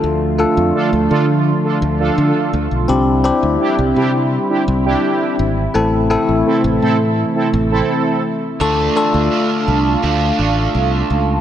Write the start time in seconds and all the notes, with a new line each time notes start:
Already playing: D3 F3 A3 D4 F4 A4
0.04 D2
0.38 A3 D4 F4 A4
0.57 F2
0.75 D4 F4 A4
0.93 D2
1.10 D3 D4 F4 A4
1.64 D4 F4 A4
1.82 D2
2.00 D4 F4 A4
2.18 D3
2.53 D2
2.71 B1
2.88 C2 G3 C4 D4 E4 G4
3.24 C4 D4 E4 G4
3.43 D2
3.61 D4 E4 G4
3.79 C2
3.96 C3 D4 E4 G4
4.50 D4 E4 G4
4.68 C2
4.86 D4 E4 G4
5.39 G#1
5.74 A1 C3 E3 A3 C4 E4 A4
6.10 A3 C4 E4 A4
6.29 A1
6.46 C4 E4 A4
6.64 A1
6.82 A2 C4 E4 A4
7.35 C4 E4 A4
7.54 A1
7.71 C4 E4 A4
8.60 D2 D3 A3 D4 F4 A4 F5
8.96 A3 D4 F4 A4
9.14 D2
9.31 D3 A3 D4
9.68 C2
10.03 D2 D3 A3 D4
10.38 A1 A3 D4
10.75 C2
11.10 C#2